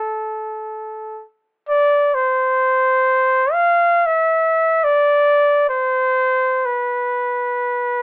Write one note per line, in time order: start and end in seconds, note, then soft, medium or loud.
0.00 1.25 A4 medium
1.69 2.16 D5 medium
2.15 3.54 C5 medium
3.52 4.08 F5 medium
4.06 4.85 E5 medium
4.84 5.69 D5 medium
5.69 6.67 C5 medium
6.65 8.02 B4 medium